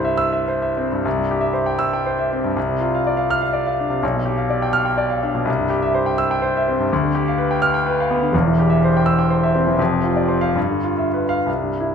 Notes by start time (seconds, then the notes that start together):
Already playing: C2 G2 E4 C5 E5
0.05 E5
0.18 E6
0.33 E5
0.48 C5
0.62 E5
0.77 C4
0.92 G2
1.05 C2
1.18 G2
1.31 G4
1.41 E5
1.53 C5
1.66 G5
1.79 E6
1.93 G5
2.06 C5
2.19 E5
2.32 C4
2.44 G2
2.56 C2
2.69 C3
2.80 F4
2.95 F5
3.07 D5
3.17 F5
3.30 F6
3.42 F5
3.53 D5
3.67 F5
3.80 D4
3.90 C3
4.03 B1
4.14 B2
4.26 G4
4.38 F5
4.50 D5
4.62 G5
4.73 F6
4.85 G5
4.98 D5
5.09 F5
5.23 D4
5.35 B2
5.45 C2
5.59 G2
5.70 G4
5.82 E5
5.94 C5
6.06 G5
6.18 E6
6.31 G5
6.42 C5
6.57 E5
6.68 C4
6.79 G2
6.93 D2
7.03 D3
7.15 G4
7.28 F5
7.38 B4
7.51 G5
7.62 F6
7.74 G5
7.86 B4
8.00 F5
8.11 B3
8.22 D3
8.32 E1 E2
8.47 E3
8.59 G4
8.70 E5
8.84 C5
8.97 G5
9.06 E6
9.19 G5
9.30 C5
9.43 E5
9.55 C4
9.67 E3
9.77 F1 F2
9.92 C3
10.04 F4
10.16 D5
10.28 C5
10.41 F5
10.55 G2
10.70 D3
10.84 F4
10.98 E5
11.14 B4
11.29 F5
11.46 C2
11.62 G2
11.81 E4